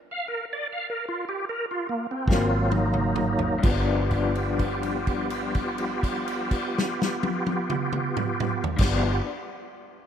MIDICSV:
0, 0, Header, 1, 5, 480
1, 0, Start_track
1, 0, Tempo, 764331
1, 652, Tempo, 834492
1, 1612, Tempo, 921659
1, 2092, Tempo, 955414
1, 2093, Time_signature, 12, 3, 24, 8
1, 5326, End_track
2, 0, Start_track
2, 0, Title_t, "Tonewheel organ"
2, 0, Program_c, 0, 16
2, 71, Note_on_c, 0, 77, 105
2, 171, Note_off_c, 0, 77, 0
2, 177, Note_on_c, 0, 70, 98
2, 284, Note_off_c, 0, 70, 0
2, 332, Note_on_c, 0, 74, 97
2, 423, Note_off_c, 0, 74, 0
2, 455, Note_on_c, 0, 77, 97
2, 546, Note_off_c, 0, 77, 0
2, 564, Note_on_c, 0, 70, 97
2, 661, Note_off_c, 0, 70, 0
2, 679, Note_on_c, 0, 65, 106
2, 773, Note_off_c, 0, 65, 0
2, 795, Note_on_c, 0, 67, 100
2, 889, Note_off_c, 0, 67, 0
2, 913, Note_on_c, 0, 70, 103
2, 1008, Note_off_c, 0, 70, 0
2, 1038, Note_on_c, 0, 65, 103
2, 1131, Note_off_c, 0, 65, 0
2, 1143, Note_on_c, 0, 58, 110
2, 1244, Note_off_c, 0, 58, 0
2, 1270, Note_on_c, 0, 60, 104
2, 1369, Note_off_c, 0, 60, 0
2, 1376, Note_on_c, 0, 58, 54
2, 1376, Note_on_c, 0, 60, 108
2, 1378, Note_on_c, 0, 54, 58
2, 1392, Note_on_c, 0, 65, 89
2, 1617, Note_off_c, 0, 60, 0
2, 1620, Note_off_c, 0, 65, 0
2, 1621, Note_on_c, 0, 63, 105
2, 2078, Note_off_c, 0, 58, 0
2, 2079, Note_off_c, 0, 54, 0
2, 2082, Note_off_c, 0, 63, 0
2, 2098, Note_on_c, 0, 65, 66
2, 2100, Note_on_c, 0, 59, 57
2, 2100, Note_on_c, 0, 67, 68
2, 4610, Note_off_c, 0, 65, 0
2, 4611, Note_off_c, 0, 59, 0
2, 4611, Note_off_c, 0, 67, 0
2, 4686, Note_on_c, 0, 65, 77
2, 4687, Note_on_c, 0, 67, 81
2, 4690, Note_on_c, 0, 59, 70
2, 4899, Note_off_c, 0, 65, 0
2, 4900, Note_off_c, 0, 67, 0
2, 4901, Note_off_c, 0, 59, 0
2, 5326, End_track
3, 0, Start_track
3, 0, Title_t, "Clean electric guitar"
3, 0, Program_c, 1, 27
3, 1366, Note_on_c, 1, 60, 75
3, 1369, Note_on_c, 1, 58, 74
3, 1377, Note_on_c, 1, 44, 59
3, 1377, Note_on_c, 1, 54, 70
3, 1514, Note_off_c, 1, 60, 0
3, 1515, Note_off_c, 1, 58, 0
3, 1519, Note_off_c, 1, 44, 0
3, 1519, Note_off_c, 1, 54, 0
3, 2070, Note_on_c, 1, 43, 77
3, 2093, Note_on_c, 1, 53, 82
3, 2115, Note_on_c, 1, 59, 86
3, 2134, Note_on_c, 1, 62, 86
3, 4616, Note_off_c, 1, 43, 0
3, 4628, Note_off_c, 1, 53, 0
3, 4639, Note_off_c, 1, 59, 0
3, 4648, Note_off_c, 1, 62, 0
3, 4673, Note_on_c, 1, 43, 85
3, 4696, Note_on_c, 1, 53, 95
3, 4718, Note_on_c, 1, 59, 83
3, 4735, Note_on_c, 1, 62, 83
3, 4895, Note_off_c, 1, 43, 0
3, 4906, Note_off_c, 1, 53, 0
3, 4917, Note_off_c, 1, 59, 0
3, 4926, Note_off_c, 1, 62, 0
3, 5326, End_track
4, 0, Start_track
4, 0, Title_t, "Fingered electric bass"
4, 0, Program_c, 2, 33
4, 1363, Note_on_c, 2, 32, 105
4, 2073, Note_off_c, 2, 32, 0
4, 2096, Note_on_c, 2, 31, 90
4, 4609, Note_off_c, 2, 31, 0
4, 4686, Note_on_c, 2, 31, 77
4, 4886, Note_off_c, 2, 31, 0
4, 5326, End_track
5, 0, Start_track
5, 0, Title_t, "Drums"
5, 1364, Note_on_c, 9, 36, 88
5, 1382, Note_on_c, 9, 38, 92
5, 1421, Note_off_c, 9, 36, 0
5, 1439, Note_off_c, 9, 38, 0
5, 1616, Note_on_c, 9, 48, 87
5, 1668, Note_off_c, 9, 48, 0
5, 1731, Note_on_c, 9, 47, 81
5, 1783, Note_off_c, 9, 47, 0
5, 1846, Note_on_c, 9, 45, 91
5, 1898, Note_off_c, 9, 45, 0
5, 1966, Note_on_c, 9, 43, 82
5, 2018, Note_off_c, 9, 43, 0
5, 2094, Note_on_c, 9, 49, 92
5, 2096, Note_on_c, 9, 36, 105
5, 2144, Note_off_c, 9, 49, 0
5, 2146, Note_off_c, 9, 36, 0
5, 2332, Note_on_c, 9, 49, 45
5, 2336, Note_on_c, 9, 36, 62
5, 2382, Note_off_c, 9, 49, 0
5, 2386, Note_off_c, 9, 36, 0
5, 2456, Note_on_c, 9, 57, 37
5, 2507, Note_off_c, 9, 57, 0
5, 2576, Note_on_c, 9, 49, 52
5, 2578, Note_on_c, 9, 36, 64
5, 2626, Note_off_c, 9, 49, 0
5, 2628, Note_off_c, 9, 36, 0
5, 2696, Note_on_c, 9, 57, 42
5, 2746, Note_off_c, 9, 57, 0
5, 2816, Note_on_c, 9, 49, 51
5, 2817, Note_on_c, 9, 36, 70
5, 2866, Note_off_c, 9, 49, 0
5, 2867, Note_off_c, 9, 36, 0
5, 2933, Note_on_c, 9, 57, 49
5, 2984, Note_off_c, 9, 57, 0
5, 3055, Note_on_c, 9, 49, 49
5, 3058, Note_on_c, 9, 36, 68
5, 3106, Note_off_c, 9, 49, 0
5, 3108, Note_off_c, 9, 36, 0
5, 3173, Note_on_c, 9, 57, 51
5, 3223, Note_off_c, 9, 57, 0
5, 3299, Note_on_c, 9, 36, 67
5, 3302, Note_on_c, 9, 49, 56
5, 3349, Note_off_c, 9, 36, 0
5, 3352, Note_off_c, 9, 49, 0
5, 3422, Note_on_c, 9, 57, 50
5, 3473, Note_off_c, 9, 57, 0
5, 3540, Note_on_c, 9, 36, 69
5, 3540, Note_on_c, 9, 49, 61
5, 3590, Note_off_c, 9, 36, 0
5, 3590, Note_off_c, 9, 49, 0
5, 3677, Note_on_c, 9, 38, 86
5, 3727, Note_off_c, 9, 38, 0
5, 3794, Note_on_c, 9, 38, 96
5, 3844, Note_off_c, 9, 38, 0
5, 3902, Note_on_c, 9, 48, 97
5, 3952, Note_off_c, 9, 48, 0
5, 4019, Note_on_c, 9, 48, 86
5, 4069, Note_off_c, 9, 48, 0
5, 4136, Note_on_c, 9, 47, 105
5, 4186, Note_off_c, 9, 47, 0
5, 4250, Note_on_c, 9, 47, 96
5, 4301, Note_off_c, 9, 47, 0
5, 4372, Note_on_c, 9, 45, 108
5, 4422, Note_off_c, 9, 45, 0
5, 4490, Note_on_c, 9, 45, 105
5, 4540, Note_off_c, 9, 45, 0
5, 4609, Note_on_c, 9, 43, 104
5, 4659, Note_off_c, 9, 43, 0
5, 4682, Note_on_c, 9, 49, 116
5, 4686, Note_on_c, 9, 36, 101
5, 4695, Note_on_c, 9, 38, 100
5, 4732, Note_off_c, 9, 49, 0
5, 4736, Note_off_c, 9, 36, 0
5, 4745, Note_off_c, 9, 38, 0
5, 5326, End_track
0, 0, End_of_file